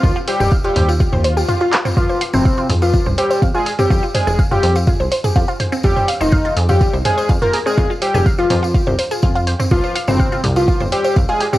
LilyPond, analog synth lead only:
\new Staff \with { instrumentName = "Analog synth lead" } { \time 4/4 \key f \minor \tempo 4 = 124 f'16 r16 g'8 r16 g'8 r2 r16 | f'8 r16 c'8. r16 f'8 r16 g'8 r16 aes'16 r16 g'16~ | g'16 r16 aes'8 r16 g'8 r2 r16 | g'8 r16 ees'8. r16 g'8 r16 aes'8 r16 bes'16 r16 aes'16~ |
aes'16 r16 g'8 r16 f'8 r2 r16 | f'8 r16 c'8. r16 f'8 r16 g'8 r16 aes'16 r16 g'16 | }